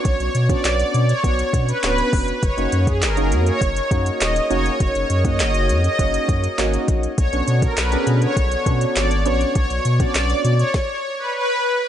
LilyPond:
<<
  \new Staff \with { instrumentName = "Supersaw synth" } { \time 4/4 \key b \lydian \tempo 4 = 101 cis''16 r8 d''16 d''16 r8 cis''16 cis''16 r8 b'16 b'8. r16 | cis''16 r8 gis'16 ais'16 r8 cis''8. r8 dis''16 r16 cis''16 r16 | cis''16 r8 dis''16 dis''16 r8 dis''8. r4. | cis''16 r8 ais'16 b'16 r8 cis''8. r8 d''16 r16 cis''16 r16 |
cis''16 r8 d''16 d''16 r8 cis''16 cis''16 r8 b'16 b'8. r16 | }
  \new Staff \with { instrumentName = "Woodwind section" } { \time 4/4 \key b \lydian << { r1 | cis''1~ | cis''1~ | cis''1~ |
cis''2 r2 | } \\ { r1 | <fis dis' gis' ais'>1~ | <fis dis' gis' ais'>1 | <d b>1~ |
<d b>2 r2 | } >> }
  \new Staff \with { instrumentName = "Synth keys" } { \time 4/4 \key b \lydian <b cis' d' fis' cis''>8 r16 <b cis' d' fis' cis''>4 r16 <b cis' d' fis' cis''>8. r16 <b cis' d' fis' cis''>4 | r16 <ais cis' dis' fis' cis''>8. r16 <ais cis' dis' fis' cis''>4 r16 <ais cis' dis' fis' cis''>8. r16 <ais cis' dis' fis' cis''>8~ | <ais cis' dis' fis' cis''>8 r16 <ais cis' dis' fis' cis''>4 r16 <ais cis' dis' fis' cis''>8. r16 <ais cis' dis' fis' cis''>4 | r16 <b cis' d' fis' cis''>8. r16 <b cis' d' fis' gis'>4 r16 <b cis' d' fis' cis''>8. r16 <b cis' d' fis' cis''>8~ |
<b cis' d' fis' cis''>8 r16 <b cis' d' fis' cis''>4 r2 r16 | }
  \new Staff \with { instrumentName = "Sub bass" } { \clef bass \time 4/4 \key b \lydian b,,16 b,,16 b,8 b,,8 b,8 b,,8 b,8 d,,8 eis,,8 | fis,,16 fis,,16 fis,8 fis,,8 fis,8 fis,,8 fis,8 dis,,8 eis,,8 | fis,,16 fis,,16 fis,8 fis,,8 fis,8 fis,,8 fis,8 gis,,8 ais,,8 | b,,16 b,,16 b,8 b,,8 b,8 b,,8 b,8 gis,,8 ais,,8 |
b,,16 b,,16 b,8 b,,8 b,8 r2 | }
  \new DrumStaff \with { instrumentName = "Drums" } \drummode { \time 4/4 <hh bd>16 hh16 hh16 <hh bd>16 <hc hh sn>16 hh16 hh16 hh16 <hh bd>16 hh16 <hh bd>16 hh16 <hc hh sn>16 hh16 <hho bd>16 hh16 | <hh bd>16 hh16 hh16 <hh bd>16 <hc hh sn>16 hh16 hh16 hh16 <hh bd>16 hh16 <hh bd>16 hh16 <hc hh sn>16 hh16 hh16 hh16 | <hh bd>16 hh16 hh16 <hh bd>16 <hc hh sn>16 hh16 hh16 hh16 <hh bd>16 hh16 <hh bd>16 hh16 <hc hh sn>16 hh16 <hh bd>16 hh16 | <hh bd>16 hh16 hh16 <hh bd>16 <hc hh sn>16 hh16 hh16 hh16 <hh bd>16 hh16 <hh bd>16 hh16 <hc hh sn>16 hh16 hh16 hh16 |
<hh bd>16 hh16 hh16 <hh bd>16 <hc hh sn>16 hh16 hh16 hh16 <bd sn>4 r4 | }
>>